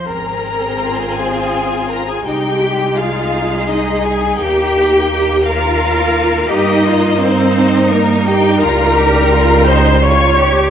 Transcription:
<<
  \new Staff \with { instrumentName = "Violin section" } { \time 3/4 \key aes \major \tempo 4 = 84 bes''4. aes''4 bes''16 aes''16 | g''4 f''4 ees''8 aes''8 | g''4. f''4. | ees''4 c''4 bes'8 g''8 |
bes''4. c'''8 des'''4 | }
  \new Staff \with { instrumentName = "Viola section" } { \time 3/4 \key aes \major bes'4. aes'4 bes'16 aes'16 | g'4 f'4 ees'8 aes'8 | g'4. f'4. | ees'4 c'4 bes8 g'8 |
bes'4. c''8 des''4 | }
  \new Staff \with { instrumentName = "Cello section" } { \time 3/4 \key aes \major r4 f'2 | ees'8 g'8 aes'2 | g'4 g'8 bes'4. | g'8 f'8 ees'2 |
f'8 g'8 f'8 ees'8 f'8 g'8 | }
  \new Staff \with { instrumentName = "Violin section" } { \time 3/4 \key aes \major << { aes'2. | ees'2.~ | ees'2. | ees'2.~ |
ees'2. | } \\ { c'2. | aes2. | bes2.~ | bes2. |
g2. | } >> }
  \new Staff \with { instrumentName = "Double bass section" } { \clef bass \time 3/4 \key aes \major aes,,2. | c,2. | ees,2. | g,2. |
des,2. | }
>>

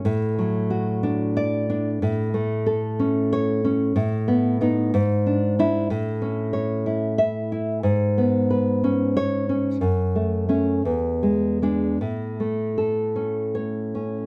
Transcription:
\new Staff \with { instrumentName = "Nylon-string guitar" } { \time 6/8 \key a \major \tempo 4. = 61 << { r2 d''4 | r2 cis''4 | r4 dis'8 r4 e'8 | r2 e''4 |
r2 cis''4 | r4 cis'8 r4 d'8 | r2 cis''4 | } \\ { a,8 fis8 fis'8 d'4 d'8 | a,8 a8 a'8 cis'4 cis'8 | a,8 b8 b8 gis,8 d'8 d'8 | a,8 cis'8 cis''8 e'4 e'8 |
gis,8 b8 b'8 cis'4 cis'8 | fis,8 a8 a8 e,8 gis8 gis8 | a,8 a8 a'8 cis'4 cis'8 | } >> }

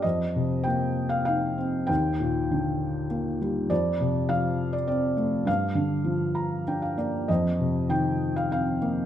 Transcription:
<<
  \new Staff \with { instrumentName = "Felt piano" } { \time 3/4 \key f \mixolydian \tempo 4 = 99 << { r2. | r2. | r2. | r4. bes''8 g''16 f''16 d''8 |
r2. | } \\ { ees''4 g''8. f''16 f''4 | g''2 r4 | d''4 f''8. d''16 d''4 | f''2 r4 |
ees''4 g''8. f''16 f''4 | } >> }
  \new Staff \with { instrumentName = "Felt piano" } { \clef bass \time 3/4 \key f \mixolydian f,8 c8 bes4 ees'8 c'8 | ees,8 bes,8 d4 bes8 g8 | f,8 c8 f4 c'8 a8 | g,8 d8 f4 d'8 bes8 |
f,8 c8 ees4 c'8 bes8 | }
>>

